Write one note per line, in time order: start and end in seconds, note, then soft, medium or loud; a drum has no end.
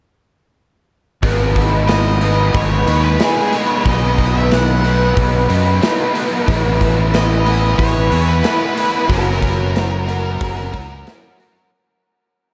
1.22 2.50 G#1 loud
1.22 2.54 G#2 medium
1.22 2.54 D#3 medium
1.22 2.22 G#3 medium
1.22 2.22 B3 medium
1.22 2.22 D#4 medium
1.22 2.21 B4 medium
1.22 kick loud
1.22 open hi-hat medium
1.56 kick medium
1.56 open hi-hat medium
1.88 2.55 D#5 medium
1.88 snare loud
1.88 open hi-hat medium
2.21 2.88 G#3 medium
2.21 2.88 B3 medium
2.21 2.86 D#4 medium
2.21 2.87 B4 medium
2.21 open hi-hat medium
2.54 2.84 G#1 medium
2.54 3.05 C#5 medium
2.54 kick loud
2.54 open hi-hat medium
2.87 3.17 D#2 medium
2.87 3.18 G#3 medium
2.87 3.19 B3 medium
2.87 3.19 D#4 medium
2.87 3.20 B4 medium
2.87 open hi-hat medium
3.04 3.22 B4 medium
3.19 3.53 G#3 medium
3.19 3.53 B3 medium
3.19 3.51 D#4 medium
3.19 3.55 G#4 medium
3.19 3.52 B4 medium
3.19 snare loud
3.19 open hi-hat medium
3.53 3.84 G#3 medium
3.53 3.86 B3 medium
3.53 3.83 D#4 medium
3.53 3.86 B4 medium
3.53 3.88 C#5 medium
3.53 open hi-hat medium
3.84 5.12 B1 loud
3.84 5.16 B2 medium
3.84 5.16 D#3 medium
3.84 4.84 F#3 medium
3.84 4.85 B3 medium
3.84 4.83 D#4 medium
3.84 4.84 B4 loud
3.84 kick loud
3.84 open hi-hat medium
3.89 4.37 D#5 loud
4.18 kick medium
4.18 open hi-hat medium
4.37 4.52 E5 medium
4.52 5.13 F#5 medium
4.52 snare loud
4.52 open hi-hat medium
4.84 5.49 F#3 medium
4.84 5.48 B3 medium
4.84 5.48 D#4 medium
4.84 5.47 B4 medium
4.84 open hi-hat medium
5.17 5.47 B1 medium
5.17 kick loud
5.17 open hi-hat medium
5.48 5.79 F#2 medium
5.48 5.80 F#3 medium
5.48 5.81 B3 medium
5.48 5.81 D#4 medium
5.48 5.82 B4 medium
5.48 open hi-hat medium
5.81 6.14 F#3 medium
5.81 6.14 B3 medium
5.81 6.13 D#4 medium
5.81 6.13 B4 medium
5.81 snare loud
5.81 open hi-hat medium
6.14 6.46 F#3 medium
6.14 6.45 B3 medium
6.14 6.45 D#4 medium
6.14 6.45 B4 medium
6.14 open hi-hat medium
6.46 7.75 A1 medium
6.46 7.78 A2 medium
6.46 7.78 A3 medium
6.46 7.45 B3 medium
6.46 7.45 E4 loud
6.46 7.44 B4 medium
6.46 kick loud
6.46 open hi-hat medium
6.81 kick medium
6.81 open hi-hat medium
7.14 7.78 D#5 loud
7.14 snare loud
7.14 open hi-hat medium
7.45 8.12 B3 medium
7.45 8.10 E4 medium
7.45 8.09 B4 medium
7.45 open hi-hat medium
7.78 8.08 A1 medium
7.78 8.29 C#5 loud
7.78 kick loud
7.78 open hi-hat medium
8.10 8.41 E2 medium
8.10 8.43 B3 medium
8.10 8.43 E4 medium
8.10 8.44 B4 medium
8.10 open hi-hat medium
8.29 9.12 B4 loud
8.43 9.07 A3 medium
8.43 8.76 B3 medium
8.43 8.75 E4 medium
8.43 8.74 B4 medium
8.43 snare loud
8.43 open hi-hat medium
8.75 9.08 B3 medium
8.75 9.07 E4 medium
8.75 9.07 B4 medium
8.75 open hi-hat medium
9.08 10.36 F#1 loud
9.08 10.40 F#3 loud
9.08 10.08 C#4 medium
9.08 10.07 F#4 medium
9.08 10.06 A#4 loud
9.08 kick loud
9.08 open hi-hat medium
9.13 11.04 A#4 medium
9.42 kick medium
9.42 open hi-hat medium
9.76 snare loud
9.76 open hi-hat medium
10.07 10.73 C#4 medium
10.07 10.72 F#4 medium
10.07 10.71 A#4 medium
10.07 open hi-hat medium
10.41 10.71 F#1 medium
10.41 kick loud
10.41 open hi-hat medium
10.72 11.03 C#2 medium
10.72 11.05 C#4 medium
10.72 11.07 F#4 medium
10.72 11.06 A#4 medium
10.72 kick medium
10.72 open hi-hat medium
11.06 11.70 F#3 medium
11.06 11.38 C#4 medium
11.06 11.38 F#4 medium
11.06 11.37 A#4 medium
11.06 snare loud
11.06 open hi-hat medium
11.38 11.70 C#4 medium
11.38 11.70 F#4 medium
11.38 11.69 A#4 medium
11.38 open hi-hat medium